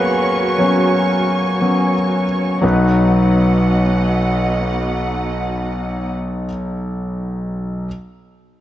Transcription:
Already playing: grand piano F#3 G#3 A#3 B3 F#4 G#4 A#4 B4, string section F#4 C#5 G#5 C#6
0.58 grand piano F#3 B3 C#4
1.61 grand piano F#3 B3 C#4
2.61 grand piano B1 F#3 B3 D#4, string section B2 B3 D#5 F#5
2.66 grand piano B4

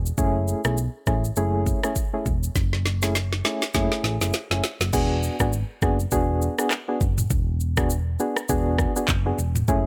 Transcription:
Already playing: picked electric bass E1
0.06 shaker
0.18 picked electric bass F#1, synth keys A3 C#4 E4 G#4, kick, shaker
0.48 shaker
0.64 picked electric bass B1, synth keys A3 C#4 E4 G#4, cross-stick, shaker
0.77 shaker
1.07 picked electric bass A1, synth keys A3 C#4 E4 G#4, kick, cross-stick, shaker
1.24 shaker
1.36 picked electric bass F#1, synth keys A3 C#4 E4 G#4, shaker
1.66 kick, shaker
1.83 synth keys A3 C#4 E4 G#4, cross-stick, shaker
1.96 kick, shaker
2.13 synth keys A3 C#4 E4 G#4
2.26 picked electric bass E1, kick, shaker
2.43 shaker
2.56 picked electric bass F#1, kick, snare, shaker
2.73 snare
2.86 snare, shaker
3.02 synth keys A3 C#4 E4 G#4, snare, shaker
3.15 snare, shaker
3.33 snare
3.44 synth keys A3 C#4 E4 G#4, snare, shaker
3.62 snare, shaker
3.74 picked electric bass F#1, synth keys A3 C#4 E4 G#4, kick, snare, shaker
3.92 snare
4.04 picked electric bass A1, snare, shaker
4.21 picked electric bass F#1, synth keys A3 C#4 E4 G#4, snare, shaker
4.33 snare, shaker
4.51 picked electric bass F#1, synth keys A3 C#4 E4 G#4, snare
4.64 snare, shaker
4.80 picked electric bass F#1, snare, shaker
4.93 picked electric bass E1, synth keys B3 D4 F#4 G#4, kick, crash, shaker
5.23 shaker
5.40 picked electric bass G#1, synth keys B3 D4 F#4 G#4, kick, cross-stick, shaker
5.53 shaker
5.82 picked electric bass F#1, synth keys B3 D4 F#4 G#4, kick, cross-stick, shaker
6.00 shaker
6.12 picked electric bass E1, synth keys B3 D4 F#4 G#4, kick, shaker
6.42 shaker
6.58 synth keys B3 D4 F#4 G#4, cross-stick, shaker
6.71 cross-stick, clap, shaker
6.88 synth keys B3 D4 F#4 G#4
7.01 picked electric bass F#1, kick, shaker
7.18 mid tom, shaker
7.30 picked electric bass E1, kick, shaker
7.60 shaker
7.77 synth keys B3 D4 F#4 G#4, kick, cross-stick, shaker
7.90 shaker
8.20 synth keys B3 D4 F#4 G#4, shaker
8.37 cross-stick, shaker
8.49 picked electric bass E1, synth keys B3 D4 F#4 G#4, kick, shaker
8.78 kick, cross-stick, shaker
8.96 synth keys B3 D4 F#4 G#4, shaker
9.08 picked electric bass F#1, kick, clap, shaker
9.26 synth keys B3 D4 F#4 G#4
9.38 picked electric bass E1, shaker
9.56 mid tom, shaker
9.68 picked electric bass F#1, synth keys A3 C#4 E4 G#4, kick, shaker

